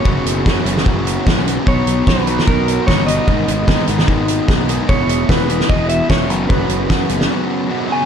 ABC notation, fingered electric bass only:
X:1
M:4/4
L:1/8
Q:1/4=149
K:F#mix
V:1 name="Fingered electric bass" clef=bass
F,,, F,,, F,, F,,, F,,,2 B,,,2 | B,,, B,,, B,,,2 B,,,2 =G,,,2 | G,,, G,,, G,, G,,, G,,,2 B,,,2 | E,,, E,,, E,,,2 E,,,2 E,,, F,,, |
F,,, F,,, F,, F,,, z4 |]